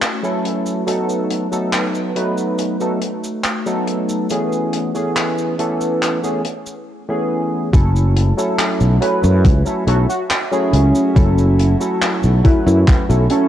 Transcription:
Already playing: A3 E4 F#4 B4
0.02 clap, closed hi-hat, cabasa
0.23 F#3 A3 C#4 E4 A4, cabasa
0.45 closed hi-hat
0.66 cabasa
0.87 F#3 A3 B3 D#4 A4, closed hi-hat, cabasa
1.09 cabasa
1.30 closed hi-hat
1.51 F#3 A3 B3 D#4 A4, cabasa
1.73 clap, closed hi-hat, cabasa
1.95 cabasa
2.15 F#3 A3 B3 D#4 B4, closed hi-hat
2.38 cabasa
2.59 closed hi-hat, cabasa
2.80 F#3 A3 B3 D#4 A4, cabasa
3.02 closed hi-hat
3.24 cabasa
3.44 clap, closed hi-hat, cabasa
3.66 F#3 A3 B3 D#4 A4, cabasa
3.88 closed hi-hat
4.09 cabasa
4.30 E3 A3 B3 C#4 G#4 B4 G#5, closed hi-hat, cabasa
4.52 cabasa
4.73 closed hi-hat
4.94 E3 A3 B3 C#4 G#4, cabasa
5.16 clap, closed hi-hat, cabasa
5.38 cabasa
5.58 E3 A3 B3 C#4 A4, closed hi-hat
5.81 cabasa
6.02 clap, closed hi-hat, cabasa
6.23 E3 A3 B3 C#4 G#4, cabasa
6.45 closed hi-hat
6.66 cabasa
7.08 E3 A3 B3 C#4 G#4
7.73 F#1 F#3 A3 C#4 E4 F#4 A4 C#5 E5 F#5, kick, closed hi-hat, cabasa
7.96 cabasa
8.16 closed hi-hat
8.37 F#3 A3 C#4 E4 A4, cabasa
8.59 clap, closed hi-hat, cabasa
8.81 B1, cabasa
9.01 F#3 A3 C#4 E4 B4, closed hi-hat
9.24 F#2, cabasa
9.45 C#2, kick, closed hi-hat, cabasa
9.66 F#3 A3 C#4 E4 A4, cabasa
9.87 B1 F#3 A3 C#4 E4 F#4 A4, closed hi-hat
10.09 F#4, cabasa
10.30 clap, closed hi-hat, cabasa
10.51 F#3 A3 C#4 E4 G#4, cabasa
10.73 C#2, closed hi-hat
10.95 cabasa
11.15 F#1 F#3 A3 C#4 E4 A4, kick, closed hi-hat, cabasa
11.38 cabasa
11.59 closed hi-hat
11.80 F#3 A3 C#4 E4 A4, cabasa
12.01 clap, closed hi-hat, cabasa
12.23 B1, cabasa
12.44 F#3 A3 C#4 E4 B4, kick, closed hi-hat
12.66 F#2 E4, cabasa
12.88 kick, clap, closed hi-hat, cabasa
13.09 B1 F#3 A3 C#4 E4 A4, cabasa
13.30 F#3 A3 C#4 E4 A4, closed hi-hat

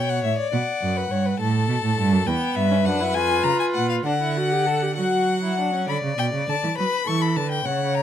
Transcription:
Already playing: B2 C#5 G5
0.09 F#5
0.24 A2 E5
0.38 D5
0.53 B2 D5 F#5
0.82 F#2
0.97 B4
1.11 G2 C#5
1.26 B4
1.40 A2 A4 A5
1.69 B2
1.83 A2
1.98 G2
2.12 F#2
2.27 E2 B3 B4 G5
2.55 G2 E5
2.71 C#4
2.85 F#2 D4 F#5
3.00 E4
3.14 F2 F4 G#5
3.44 C#3 A#5
3.59 G#5
3.74 A#2 F#5
3.89 F5
4.05 D3 D4 F#5
4.21 E4
4.36 F#4
4.52 G4
4.67 A4
4.82 G4
4.97 F#3 F#4 F#5
5.44 E4
5.59 D4
5.74 C#4
5.89 D3 D5 B5
6.04 C#3
6.18 B2 G5
6.34 C#3
6.48 D3 A5
6.63 E3
6.78 F#3 B4 B5
7.07 E3 A4 C#6
7.21 B5
7.36 D3 B4 A5
7.51 G5
7.65 C#3 C#5 F#5
7.95 A#5

